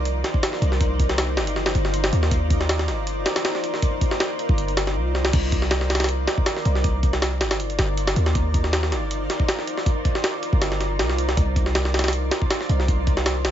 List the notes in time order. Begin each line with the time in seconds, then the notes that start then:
Already playing: C2
0.05 closed hi-hat
0.24 snare, closed hi-hat
0.34 kick
0.43 snare, closed hi-hat
0.53 snare
0.62 C2, closed hi-hat
0.72 snare
0.81 kick, closed hi-hat
0.99 kick, closed hi-hat
1.09 snare
1.18 snare, closed hi-hat
1.37 G1, snare
1.47 closed hi-hat
1.56 snare
1.66 snare
1.75 G1, closed hi-hat
1.85 snare
1.94 closed hi-hat
2.04 snare
2.13 D#2, closed hi-hat
2.23 snare
2.31 kick, closed hi-hat
2.50 kick, closed hi-hat
2.61 snare
2.69 snare, closed hi-hat
2.79 snare
2.88 G1, snare, closed hi-hat
3.07 closed hi-hat
3.26 snare, closed hi-hat
3.36 snare, closed hi-hat
3.45 snare, closed hi-hat
3.55 snare
3.64 closed hi-hat
3.74 snare
3.82 kick, closed hi-hat
4.01 kick, closed hi-hat
4.11 snare
4.20 snare, closed hi-hat
4.39 closed hi-hat
4.49 G1, kick
4.58 closed hi-hat
4.68 closed hi-hat
4.77 snare, closed hi-hat
4.87 snare
4.96 C2
5.15 snare
5.25 snare
5.33 C2, kick, closed hi-hat, crash
5.52 kick, closed hi-hat
5.62 snare
5.71 snare, closed hi-hat
5.81 snare
5.90 snare, closed hi-hat
5.95 snare, closed hi-hat
6.00 snare, closed hi-hat
6.04 snare, closed hi-hat
6.09 closed hi-hat
6.28 snare, closed hi-hat
6.38 kick
6.46 snare, closed hi-hat
6.57 snare
6.65 C2, closed hi-hat
6.75 snare
6.84 kick, closed hi-hat
7.03 kick, closed hi-hat
7.13 snare
7.22 snare, closed hi-hat
7.41 G1, snare, closed hi-hat
7.51 snare, closed hi-hat
7.60 closed hi-hat
7.70 closed hi-hat
7.79 G1, snare, closed hi-hat
7.97 closed hi-hat
8.07 snare
8.16 D#2, closed hi-hat
8.26 snare
8.35 kick, closed hi-hat
8.54 kick, closed hi-hat
8.64 snare
8.73 snare, closed hi-hat
8.83 snare
8.92 G1, snare, closed hi-hat
9.11 closed hi-hat
9.30 snare, closed hi-hat
9.40 kick
9.49 snare, closed hi-hat
9.59 snare
9.67 closed hi-hat
9.78 snare
9.86 kick, closed hi-hat
10.05 kick, closed hi-hat
10.15 snare
10.24 snare, closed hi-hat
10.43 closed hi-hat
10.53 G1, kick
10.62 snare, closed hi-hat
10.72 snare
10.81 snare, closed hi-hat
10.99 C2, snare, closed hi-hat
11.10 snare
11.18 closed hi-hat
11.29 snare
11.37 C2, kick, closed hi-hat
11.56 kick, closed hi-hat
11.66 snare
11.75 snare, closed hi-hat
11.85 snare
11.94 snare, closed hi-hat
11.99 snare, closed hi-hat
12.04 snare, closed hi-hat
12.08 snare, closed hi-hat
12.13 closed hi-hat
12.31 snare, closed hi-hat
12.42 kick
12.51 snare, closed hi-hat
12.61 snare
12.69 C2, closed hi-hat
12.80 snare
12.88 kick, closed hi-hat
13.07 kick, closed hi-hat
13.17 snare
13.26 snare, closed hi-hat
13.45 G1, snare, closed hi-hat